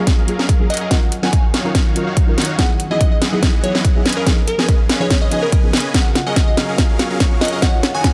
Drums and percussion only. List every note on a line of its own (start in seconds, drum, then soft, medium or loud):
0.07 kick loud
0.07 snare soft
0.07 closed hi-hat medium
0.28 closed hi-hat medium
0.39 snare soft
0.49 kick medium
0.49 closed hi-hat medium
0.70 closed hi-hat medium
0.74 closed hi-hat medium
0.77 closed hi-hat medium
0.91 kick medium
0.91 snare medium
0.91 closed hi-hat medium
1.12 closed hi-hat medium
1.23 snare soft
1.33 kick loud
1.33 closed hi-hat medium
1.54 snare medium
1.54 closed hi-hat medium
1.75 kick medium
1.75 snare medium
1.75 closed hi-hat medium
1.96 closed hi-hat medium
2.17 kick loud
2.17 closed hi-hat medium
2.38 snare medium
2.38 closed hi-hat soft
2.42 closed hi-hat medium
2.45 closed hi-hat medium
2.59 kick medium
2.59 snare medium
2.59 closed hi-hat medium
2.80 closed hi-hat medium
3.01 kick loud
3.01 closed hi-hat medium
3.22 snare medium
3.22 closed hi-hat medium
3.43 kick medium
3.43 snare medium
3.43 closed hi-hat medium
3.64 closed hi-hat medium
3.75 snare medium
3.85 kick medium
3.85 closed hi-hat medium
4.06 snare medium
4.06 closed hi-hat soft
4.09 closed hi-hat medium
4.13 closed hi-hat medium
4.27 kick medium
4.27 snare medium
4.27 closed hi-hat medium
4.48 closed hi-hat medium
4.59 snare medium
4.69 kick loud
4.69 closed hi-hat medium
4.89 snare medium
4.89 closed hi-hat medium
5.10 kick medium
5.10 snare medium
5.10 closed hi-hat medium
5.32 closed hi-hat medium
5.52 kick medium
5.52 closed hi-hat medium
5.73 snare medium
5.73 closed hi-hat soft
5.77 closed hi-hat medium
5.80 closed hi-hat medium
5.94 kick medium
5.94 snare medium
5.94 closed hi-hat medium
6.15 snare medium
6.15 closed hi-hat medium
6.36 kick loud
6.36 snare medium
6.36 closed hi-hat medium
6.57 snare medium
6.57 closed hi-hat medium
6.78 kick medium
6.78 snare medium
6.78 closed hi-hat medium
6.99 snare medium
6.99 closed hi-hat medium
7.20 kick medium
7.20 snare medium
7.20 closed hi-hat medium
7.41 snare medium
7.41 closed hi-hat soft
7.45 closed hi-hat medium
7.48 closed hi-hat medium
7.62 kick medium
7.62 snare medium
7.62 closed hi-hat medium
7.83 snare medium
7.83 closed hi-hat medium
8.04 kick medium
8.04 snare medium
8.04 closed hi-hat medium